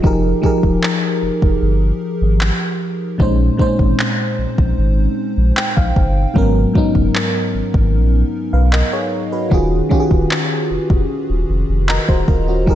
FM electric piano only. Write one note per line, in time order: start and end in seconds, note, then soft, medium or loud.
0.02 0.29 F3 medium
0.02 0.29 D#4 medium
0.02 0.30 G4 medium
0.02 0.30 G#4 medium
0.07 0.31 A#4 medium
0.42 1.45 F3 medium
0.42 1.45 D#4 medium
0.42 1.46 G4 medium
0.42 1.46 G#4 medium
0.46 1.47 A#4 medium
3.18 3.45 A#2 medium
3.18 3.45 G#3 medium
3.18 3.46 C#4 medium
3.18 3.46 D#4 medium
3.22 3.47 C5 medium
3.57 4.60 A#2 medium
3.57 4.61 G#3 medium
3.57 3.66 C4 medium
3.57 4.62 D#4 medium
3.61 4.62 C5 loud
3.66 4.65 C#4 medium
5.57 5.75 G5 medium
5.76 6.32 F5 medium
6.34 6.60 G#2 medium
6.34 6.61 F#3 medium
6.34 6.61 B3 medium
6.34 6.62 C#4 medium
6.38 6.62 A#4 medium
6.73 7.76 G#2 medium
6.73 7.77 F#3 medium
6.73 7.77 B3 medium
6.73 7.78 C#4 medium
6.78 7.78 D#4 medium
8.53 8.72 B4 medium
8.53 8.72 F5 medium
8.73 8.92 A#4 medium
8.73 8.91 D#5 medium
8.93 9.30 G#4 medium
8.93 9.30 C#5 medium
9.32 9.52 F#4 medium
9.32 9.70 B4 medium
9.50 9.76 D#3 medium
9.50 9.77 C#4 medium
9.50 9.77 F4 medium
9.50 9.78 F#4 medium
9.54 9.78 G#4 medium
9.89 10.92 D#3 medium
9.89 10.93 C#4 medium
9.89 10.93 F4 medium
9.89 10.94 F#4 medium
9.94 9.99 G4 medium
10.00 10.98 G#4 medium
11.89 12.08 A#4 medium
11.89 12.07 D#5 medium
11.89 12.64 A#5 medium
12.09 12.28 F#4 medium
12.09 12.27 C5 medium
12.29 12.47 F4 medium
12.29 12.47 A#4 medium
12.48 12.75 C#4 medium
12.48 12.75 F#4 medium
12.66 12.75 F3 medium
12.66 12.75 D#4 medium
12.66 12.75 G4 medium
12.66 12.75 G#4 medium
12.70 12.75 A#4 medium